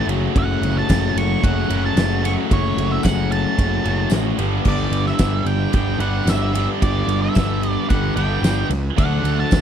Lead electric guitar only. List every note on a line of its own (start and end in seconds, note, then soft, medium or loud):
0.38 0.78 F#5 loud
0.78 1.18 A5 loud
1.18 1.44 C#6 loud
1.44 1.74 F#5 loud
1.77 1.83 F#5 medium
1.85 2.26 A5 medium
2.25 2.32 C#6 loud
2.53 2.93 C#5 medium
2.92 3.03 E5 medium
3.03 3.31 F#5 loud
3.32 4.08 A5 medium
4.68 5.07 D5 loud
5.07 5.49 E5 medium
5.47 5.73 G5 loud
5.74 6.00 G5 loud
6.00 6.28 F#5 loud
6.29 6.66 E5 medium
6.83 7.22 D5 loud
7.22 7.70 E5 medium
7.70 7.86 D5 medium
7.89 8.16 F#5 loud
8.16 8.67 G5 loud
8.99 9.39 F#5 loud
9.40 9.61 A5 medium